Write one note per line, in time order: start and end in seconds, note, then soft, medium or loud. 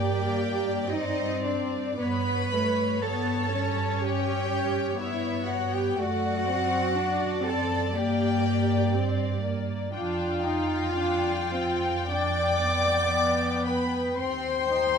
0.00 2.00 G2 medium
0.00 0.89 A#3 medium
0.00 0.89 G4 loud
0.00 1.97 D5 medium
0.00 0.89 G5 medium
0.88 2.00 C4 medium
0.88 1.44 D#4 loud
0.88 1.45 D#5 loud
1.44 2.01 D4 medium
1.44 2.00 D5 medium
2.00 5.94 G2 medium
2.00 2.53 B3 medium
2.00 3.02 B4 loud
2.00 5.95 C#5 medium
2.00 3.05 B5 loud
2.54 3.04 A3 medium
3.04 3.53 B3 medium
3.04 4.02 A4 medium
3.04 4.02 A5 medium
3.54 4.96 C#4 medium
4.02 4.99 G4 loud
4.02 4.99 G5 medium
4.99 5.96 B3 medium
4.99 5.49 E4 loud
4.99 5.47 E5 medium
5.47 5.73 F#4 medium
5.47 5.73 F#5 medium
5.73 5.98 G4 loud
5.73 5.98 G5 medium
5.97 7.95 F#2 medium
5.97 6.47 A3 medium
5.97 7.45 F#4 loud
5.97 9.90 D5 medium
5.97 7.45 F#5 loud
6.47 6.96 C4 medium
6.96 7.45 D4 medium
7.45 7.94 C4 medium
7.45 7.95 A4 loud
7.45 7.95 A5 medium
7.94 9.95 G2 medium
7.94 8.94 A#3 medium
7.94 9.44 G4 medium
7.94 9.44 G5 loud
8.95 9.44 C4 medium
9.44 9.93 A#3 medium
9.94 14.17 F2 medium
9.94 10.44 D4 medium
9.94 12.05 F4 loud
9.94 12.06 F5 medium
9.94 14.13 G5 medium
10.46 10.97 D#4 medium
10.98 11.52 D4 medium
11.53 12.10 C4 medium
12.09 12.64 D4 medium
12.09 13.66 D5 loud
12.09 13.65 D6 loud
12.65 14.18 B3 medium
13.65 14.17 B4 medium
13.65 14.16 B5 medium
14.18 14.98 D#2 medium
14.18 14.68 C4 medium
14.18 14.98 C5 loud
14.18 14.98 G5 medium
14.18 14.98 C6 loud
14.70 14.98 D#4 medium